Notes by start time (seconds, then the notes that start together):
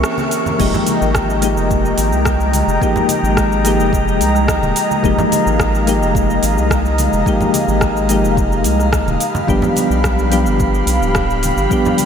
Already playing: E3 A#3 C4 C#4 G4 A#4 E5 C#6
0.04 cross-stick, cabasa
0.18 high conga, cabasa
0.31 open hi-hat, cabasa
0.46 high conga, low conga, cabasa
0.58 F1 F3 G#3 A#3 D#4 G4 D#5 G5 A#5, kick, crash, cabasa
0.74 low conga, cabasa
0.87 open hi-hat, high conga, cabasa
1.02 G#1, cabasa
1.15 kick, cross-stick, cabasa
1.30 cabasa
1.41 F3 G#3 A#3 D#4 G4, open hi-hat, cabasa
1.57 F1, cabasa
1.71 kick, cabasa
1.85 cabasa
1.98 G#1, open hi-hat, cabasa
2.12 C2, cabasa
2.25 kick, cross-stick, cabasa
2.40 cabasa
2.54 open hi-hat, high conga, cabasa
2.67 F1, cabasa
2.80 F3 G#3 A#3 D#4 G4, kick, cabasa
2.96 low conga, cabasa
3.09 open hi-hat, high conga, cabasa
3.23 G#1, cabasa
3.37 kick, cross-stick, cabasa
3.52 cabasa
3.64 F3 G#3 A#3 D#4 G4, open hi-hat, cabasa
3.79 F1, cabasa
3.93 kick, cabasa
4.08 cabasa
4.20 C2, open hi-hat, cabasa
4.35 cross-stick, cabasa
4.48 kick, cross-stick, cabasa
4.63 D#1, high conga, cabasa
4.76 open hi-hat, cabasa
4.91 high conga, cabasa
5.03 F1 F3 G#3 A#3 D#4 G4 F5, kick, cabasa
5.18 low conga, cabasa
5.32 open hi-hat, high conga, cabasa
5.46 G#1, cabasa
5.59 kick, cross-stick, cabasa
5.75 cabasa
5.86 F3 G#3 A#3 D#4 G4, open hi-hat, cabasa
6.02 F1, cabasa
6.15 kick, cabasa
6.30 cabasa
6.43 G#1, open hi-hat, cabasa
6.58 C2, cabasa
6.71 kick, cross-stick, cabasa
6.86 cabasa
6.98 open hi-hat, high conga, cabasa
7.13 F1, cabasa
7.25 F3 G#3 A#3 D#4 G4, kick, cabasa
7.41 low conga, cabasa
7.54 open hi-hat, high conga, cabasa
7.68 G#1, cabasa
7.81 kick, cross-stick, cabasa
7.97 cabasa
8.08 F3 G#3 A#3 D#4 G4, open hi-hat, cabasa
8.24 F1, cabasa
8.37 kick, cabasa
8.52 cabasa
8.64 C2, open hi-hat, cabasa
8.80 cross-stick, cabasa
8.93 kick, cross-stick, cabasa
9.07 D#1, high conga, cabasa
9.20 G4 B5, open hi-hat, cabasa
9.35 high conga, low conga, cabasa
9.47 G1 F3 G3 B3 D4 G4, kick, cabasa
9.62 low conga, cabasa
9.76 open hi-hat, high conga, cabasa
9.90 B1, cabasa
10.04 kick, cross-stick, cabasa
10.19 cabasa
10.30 F3 G3 B3 D4 G4, open hi-hat, cabasa
10.46 G1, cabasa
10.60 kick, cabasa
10.74 cabasa
10.87 B1, open hi-hat, cabasa
11.01 D1, cabasa
11.15 kick, cross-stick, cabasa
11.30 cabasa
11.43 open hi-hat, high conga, cabasa
11.57 G1, cabasa
11.70 F3 G3 B3 D4 G4, kick, cabasa
11.85 low conga, cabasa
11.98 open hi-hat, high conga, cabasa